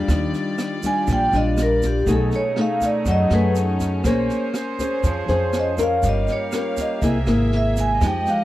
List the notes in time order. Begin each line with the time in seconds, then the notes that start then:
Already playing: G3 D4 F4 D5
0.07 D#2 D#3 G3 F4, kick, cross-stick, snare, shaker
0.33 snare, shaker
0.58 cross-stick, snare, shaker
0.83 G3 D4 F4 G#5, kick, snare, shaker
1.07 A#1 A#2, kick, snare, shaker
1.13 G5
1.33 A#1 G3 D4 F4 D#5, snare, shaker
1.57 cross-stick, snare, shaker
1.62 A#4
1.82 kick, snare, shaker
1.86 G4
2.06 B1 B2 A3 C#4 D#4 G#4, kick, snare, shaker
2.12 A4
2.31 snare, shaker
2.36 C#5
2.56 A3 D#4 G#4, cross-stick, snare
2.61 F5
2.81 kick, snare, shaker
2.85 D5
3.06 F#2 F#3, kick, snare, shaker
3.11 D#5
3.30 F#2 A3 D#4 G#4, cross-stick, snare, shaker
3.35 B4
3.55 snare, shaker
3.80 kick, snare, shaker
4.04 A#1 A#3 C#4 G#4 C5, kick, cross-stick, snare, shaker
4.29 snare, shaker
4.54 cross-stick, snare, shaker
4.79 C#4 G#4 C5, kick, snare, shaker
5.03 F2 F3, kick, snare, shaker
5.28 F2 C#4 G#4 C5, snare, shaker
5.53 cross-stick, snare, shaker
5.59 D#5
5.78 C#4 F4 A#4, kick, snare, shaker
5.83 F5
6.03 G1 G3 A#3 G4 F5, kick, snare, shaker
6.09 D#5
6.28 snare, shaker
6.32 C#5
6.52 C#4 F4 A#4, cross-stick, snare, shaker
6.77 kick, snare, shaker
6.81 D#5
7.01 C2 C3 A#3 E4 G#4 E5, kick, snare, shaker
7.27 G#1 A#3 E4 G#4, cross-stick, snare, shaker
7.52 snare
7.57 E5
7.76 G#5, kick, snare, shaker
8.01 F2 F3 G#3 D#4 G4 D#5, kick, cross-stick, snare, shaker
8.07 G5
8.27 F5, snare, shaker